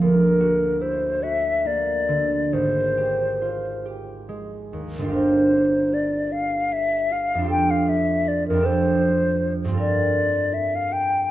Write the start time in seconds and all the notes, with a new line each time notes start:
Already playing: A#3
0.01 D2 A#4
0.40 F#4
0.81 E4 C5
1.23 F#4 E5
1.65 A#3 D5
2.08 D3
2.53 G#1 C5
2.97 G4
3.42 F4
3.85 G4
4.29 G#3
4.73 D#2
4.98 G1 D4
5.05 F4 G4
5.11 A#4 C5
5.94 D5
6.32 F5
6.73 E5
7.12 F5
7.35 F2 D4
7.41 F4 G4
7.48 A4 G5
7.71 F5
7.89 E5
8.28 D5
8.48 F2 A#4
8.53 D4 F4
8.59 G4 A4
8.66 C5
9.65 G2 C4
9.71 F4 A4
9.77 A#4 D5
10.54 E5
10.75 F5
10.93 G5